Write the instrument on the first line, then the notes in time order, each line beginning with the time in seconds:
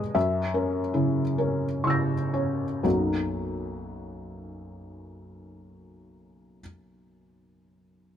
felt piano
Already playing: E2 B2 G#3 G#4 B4 D#5 G#5
0.15 F#2 E5
0.54 C#4 A#4
0.94 C#3 E4
1.38 C#4 A#4
1.84 C#3 E4 C#6 E6
1.90 A#6
2.34 C#4 C#5
2.83 B1 F#2 F#3 A#3 D#4 F#4